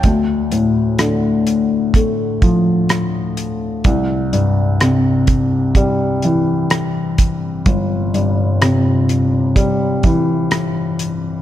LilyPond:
<<
  \new Staff \with { instrumentName = "Felt piano" } { \clef bass \time 4/4 \key c \mixolydian \tempo 4 = 63 d,8 a,8 d4 a8 f4. | c,8 g,8 c4 g8 e4. | g,,8 g,8 c4 g8 e4. | }
  \new DrumStaff \with { instrumentName = "Drums" } \drummode { \time 4/4 <hh bd>8 hh8 <hh ss>8 hh8 <hh bd>8 <hh bd>8 <hh ss>8 hh8 | <hh bd>8 hh8 <hh ss>8 <hh bd>8 <hh bd>8 hh8 <hh ss>8 <hh bd>8 | <hh bd>8 hh8 <hh ss>8 hh8 <hh bd>8 <hh bd>8 <hh ss>8 hh8 | }
>>